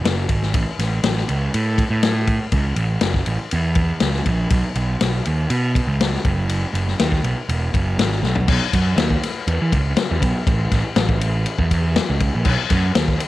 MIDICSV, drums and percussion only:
0, 0, Header, 1, 2, 480
1, 0, Start_track
1, 0, Tempo, 496689
1, 521, Time_signature, 4, 2, 24, 8
1, 12832, End_track
2, 0, Start_track
2, 0, Title_t, "Drums"
2, 50, Note_on_c, 9, 51, 89
2, 53, Note_on_c, 9, 38, 120
2, 146, Note_off_c, 9, 51, 0
2, 149, Note_off_c, 9, 38, 0
2, 278, Note_on_c, 9, 51, 79
2, 282, Note_on_c, 9, 36, 78
2, 375, Note_off_c, 9, 51, 0
2, 379, Note_off_c, 9, 36, 0
2, 410, Note_on_c, 9, 38, 38
2, 507, Note_off_c, 9, 38, 0
2, 520, Note_on_c, 9, 51, 91
2, 523, Note_on_c, 9, 36, 101
2, 617, Note_off_c, 9, 51, 0
2, 620, Note_off_c, 9, 36, 0
2, 766, Note_on_c, 9, 51, 79
2, 769, Note_on_c, 9, 38, 36
2, 863, Note_off_c, 9, 51, 0
2, 866, Note_off_c, 9, 38, 0
2, 1000, Note_on_c, 9, 51, 99
2, 1003, Note_on_c, 9, 38, 111
2, 1097, Note_off_c, 9, 51, 0
2, 1100, Note_off_c, 9, 38, 0
2, 1133, Note_on_c, 9, 38, 35
2, 1230, Note_off_c, 9, 38, 0
2, 1243, Note_on_c, 9, 51, 67
2, 1340, Note_off_c, 9, 51, 0
2, 1487, Note_on_c, 9, 51, 89
2, 1584, Note_off_c, 9, 51, 0
2, 1721, Note_on_c, 9, 36, 91
2, 1724, Note_on_c, 9, 51, 73
2, 1818, Note_off_c, 9, 36, 0
2, 1820, Note_off_c, 9, 51, 0
2, 1959, Note_on_c, 9, 51, 91
2, 1961, Note_on_c, 9, 38, 107
2, 2055, Note_off_c, 9, 51, 0
2, 2058, Note_off_c, 9, 38, 0
2, 2196, Note_on_c, 9, 51, 70
2, 2199, Note_on_c, 9, 36, 81
2, 2293, Note_off_c, 9, 51, 0
2, 2296, Note_off_c, 9, 36, 0
2, 2433, Note_on_c, 9, 51, 85
2, 2437, Note_on_c, 9, 36, 108
2, 2529, Note_off_c, 9, 51, 0
2, 2534, Note_off_c, 9, 36, 0
2, 2669, Note_on_c, 9, 51, 69
2, 2766, Note_off_c, 9, 51, 0
2, 2907, Note_on_c, 9, 51, 90
2, 2910, Note_on_c, 9, 38, 111
2, 3004, Note_off_c, 9, 51, 0
2, 3006, Note_off_c, 9, 38, 0
2, 3034, Note_on_c, 9, 38, 34
2, 3036, Note_on_c, 9, 36, 72
2, 3131, Note_off_c, 9, 38, 0
2, 3133, Note_off_c, 9, 36, 0
2, 3149, Note_on_c, 9, 51, 68
2, 3246, Note_off_c, 9, 51, 0
2, 3393, Note_on_c, 9, 51, 80
2, 3490, Note_off_c, 9, 51, 0
2, 3624, Note_on_c, 9, 51, 68
2, 3632, Note_on_c, 9, 36, 92
2, 3721, Note_off_c, 9, 51, 0
2, 3729, Note_off_c, 9, 36, 0
2, 3866, Note_on_c, 9, 51, 90
2, 3869, Note_on_c, 9, 38, 103
2, 3963, Note_off_c, 9, 51, 0
2, 3966, Note_off_c, 9, 38, 0
2, 3995, Note_on_c, 9, 38, 39
2, 4091, Note_off_c, 9, 38, 0
2, 4113, Note_on_c, 9, 51, 73
2, 4115, Note_on_c, 9, 36, 78
2, 4209, Note_off_c, 9, 51, 0
2, 4212, Note_off_c, 9, 36, 0
2, 4351, Note_on_c, 9, 51, 91
2, 4355, Note_on_c, 9, 36, 102
2, 4448, Note_off_c, 9, 51, 0
2, 4452, Note_off_c, 9, 36, 0
2, 4594, Note_on_c, 9, 51, 67
2, 4691, Note_off_c, 9, 51, 0
2, 4838, Note_on_c, 9, 51, 101
2, 4841, Note_on_c, 9, 38, 103
2, 4935, Note_off_c, 9, 51, 0
2, 4938, Note_off_c, 9, 38, 0
2, 5077, Note_on_c, 9, 51, 72
2, 5174, Note_off_c, 9, 51, 0
2, 5314, Note_on_c, 9, 51, 91
2, 5411, Note_off_c, 9, 51, 0
2, 5560, Note_on_c, 9, 36, 88
2, 5566, Note_on_c, 9, 51, 70
2, 5656, Note_off_c, 9, 36, 0
2, 5662, Note_off_c, 9, 51, 0
2, 5803, Note_on_c, 9, 51, 93
2, 5806, Note_on_c, 9, 38, 105
2, 5900, Note_off_c, 9, 51, 0
2, 5903, Note_off_c, 9, 38, 0
2, 5933, Note_on_c, 9, 38, 39
2, 6030, Note_off_c, 9, 38, 0
2, 6036, Note_on_c, 9, 51, 71
2, 6038, Note_on_c, 9, 36, 105
2, 6133, Note_off_c, 9, 51, 0
2, 6135, Note_off_c, 9, 36, 0
2, 6275, Note_on_c, 9, 51, 88
2, 6372, Note_off_c, 9, 51, 0
2, 6524, Note_on_c, 9, 51, 65
2, 6620, Note_off_c, 9, 51, 0
2, 6647, Note_on_c, 9, 38, 35
2, 6744, Note_off_c, 9, 38, 0
2, 6759, Note_on_c, 9, 51, 89
2, 6762, Note_on_c, 9, 38, 125
2, 6856, Note_off_c, 9, 51, 0
2, 6859, Note_off_c, 9, 38, 0
2, 6880, Note_on_c, 9, 36, 74
2, 6888, Note_on_c, 9, 38, 35
2, 6977, Note_off_c, 9, 36, 0
2, 6984, Note_off_c, 9, 38, 0
2, 6999, Note_on_c, 9, 51, 69
2, 7095, Note_off_c, 9, 51, 0
2, 7241, Note_on_c, 9, 51, 76
2, 7337, Note_off_c, 9, 51, 0
2, 7481, Note_on_c, 9, 36, 86
2, 7484, Note_on_c, 9, 51, 69
2, 7577, Note_off_c, 9, 36, 0
2, 7581, Note_off_c, 9, 51, 0
2, 7722, Note_on_c, 9, 51, 89
2, 7725, Note_on_c, 9, 38, 103
2, 7818, Note_off_c, 9, 51, 0
2, 7821, Note_off_c, 9, 38, 0
2, 7846, Note_on_c, 9, 38, 40
2, 7943, Note_off_c, 9, 38, 0
2, 7957, Note_on_c, 9, 38, 63
2, 8054, Note_off_c, 9, 38, 0
2, 8073, Note_on_c, 9, 43, 91
2, 8169, Note_off_c, 9, 43, 0
2, 8195, Note_on_c, 9, 49, 102
2, 8198, Note_on_c, 9, 36, 109
2, 8292, Note_off_c, 9, 49, 0
2, 8295, Note_off_c, 9, 36, 0
2, 8439, Note_on_c, 9, 36, 83
2, 8439, Note_on_c, 9, 51, 86
2, 8536, Note_off_c, 9, 36, 0
2, 8536, Note_off_c, 9, 51, 0
2, 8674, Note_on_c, 9, 51, 111
2, 8677, Note_on_c, 9, 38, 114
2, 8771, Note_off_c, 9, 51, 0
2, 8774, Note_off_c, 9, 38, 0
2, 8798, Note_on_c, 9, 36, 78
2, 8895, Note_off_c, 9, 36, 0
2, 8923, Note_on_c, 9, 51, 87
2, 8926, Note_on_c, 9, 38, 35
2, 9019, Note_off_c, 9, 51, 0
2, 9022, Note_off_c, 9, 38, 0
2, 9157, Note_on_c, 9, 51, 96
2, 9253, Note_off_c, 9, 51, 0
2, 9397, Note_on_c, 9, 36, 83
2, 9399, Note_on_c, 9, 51, 77
2, 9494, Note_off_c, 9, 36, 0
2, 9495, Note_off_c, 9, 51, 0
2, 9630, Note_on_c, 9, 51, 103
2, 9633, Note_on_c, 9, 38, 119
2, 9727, Note_off_c, 9, 51, 0
2, 9730, Note_off_c, 9, 38, 0
2, 9877, Note_on_c, 9, 36, 87
2, 9880, Note_on_c, 9, 51, 78
2, 9973, Note_off_c, 9, 36, 0
2, 9977, Note_off_c, 9, 51, 0
2, 10116, Note_on_c, 9, 36, 117
2, 10118, Note_on_c, 9, 51, 92
2, 10213, Note_off_c, 9, 36, 0
2, 10215, Note_off_c, 9, 51, 0
2, 10355, Note_on_c, 9, 51, 72
2, 10356, Note_on_c, 9, 36, 83
2, 10358, Note_on_c, 9, 38, 35
2, 10452, Note_off_c, 9, 51, 0
2, 10453, Note_off_c, 9, 36, 0
2, 10455, Note_off_c, 9, 38, 0
2, 10590, Note_on_c, 9, 51, 104
2, 10593, Note_on_c, 9, 38, 120
2, 10687, Note_off_c, 9, 51, 0
2, 10690, Note_off_c, 9, 38, 0
2, 10716, Note_on_c, 9, 36, 79
2, 10812, Note_off_c, 9, 36, 0
2, 10835, Note_on_c, 9, 51, 77
2, 10932, Note_off_c, 9, 51, 0
2, 11072, Note_on_c, 9, 51, 95
2, 11168, Note_off_c, 9, 51, 0
2, 11196, Note_on_c, 9, 36, 82
2, 11293, Note_off_c, 9, 36, 0
2, 11316, Note_on_c, 9, 51, 76
2, 11317, Note_on_c, 9, 36, 75
2, 11413, Note_off_c, 9, 51, 0
2, 11414, Note_off_c, 9, 36, 0
2, 11556, Note_on_c, 9, 51, 102
2, 11559, Note_on_c, 9, 38, 120
2, 11653, Note_off_c, 9, 51, 0
2, 11655, Note_off_c, 9, 38, 0
2, 11792, Note_on_c, 9, 51, 75
2, 11796, Note_on_c, 9, 36, 88
2, 11889, Note_off_c, 9, 51, 0
2, 11893, Note_off_c, 9, 36, 0
2, 12029, Note_on_c, 9, 49, 88
2, 12037, Note_on_c, 9, 36, 104
2, 12126, Note_off_c, 9, 49, 0
2, 12134, Note_off_c, 9, 36, 0
2, 12272, Note_on_c, 9, 51, 83
2, 12275, Note_on_c, 9, 38, 37
2, 12278, Note_on_c, 9, 36, 89
2, 12368, Note_off_c, 9, 51, 0
2, 12371, Note_off_c, 9, 38, 0
2, 12375, Note_off_c, 9, 36, 0
2, 12515, Note_on_c, 9, 51, 111
2, 12518, Note_on_c, 9, 38, 122
2, 12612, Note_off_c, 9, 51, 0
2, 12615, Note_off_c, 9, 38, 0
2, 12642, Note_on_c, 9, 36, 78
2, 12643, Note_on_c, 9, 38, 36
2, 12739, Note_off_c, 9, 36, 0
2, 12739, Note_off_c, 9, 38, 0
2, 12759, Note_on_c, 9, 51, 86
2, 12832, Note_off_c, 9, 51, 0
2, 12832, End_track
0, 0, End_of_file